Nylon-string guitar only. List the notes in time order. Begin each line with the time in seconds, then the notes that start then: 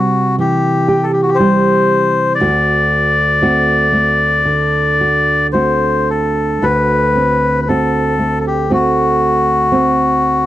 Already playing: C3 G3 C4
0.38 E3
0.88 G4
1.39 G3 C4 G4
2.40 D2 F#4
3.42 A3 C4 F#4
3.93 A3
4.46 D3
5.01 F#4
5.53 A3 C4 F#4
6.62 D2 F#4
7.16 C4
7.69 A3 C4 F#4
8.19 A3
8.70 A3 C4 F#4
9.72 C4